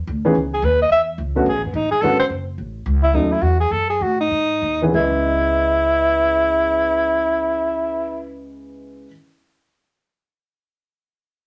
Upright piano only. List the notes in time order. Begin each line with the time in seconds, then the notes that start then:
0.25 E3 B3 C#4 D#4 G#4
1.35 D3 A3 B3 C#4 F#4
2.02 D3 G#3 B3 C#4 F#4
3.14 F#3 A3 C#4 D#4 A4
4.82 E3 B3 C#4 D#4 G#4
4.90 C#3 G#3
4.95 B3 D#5
5.01 E4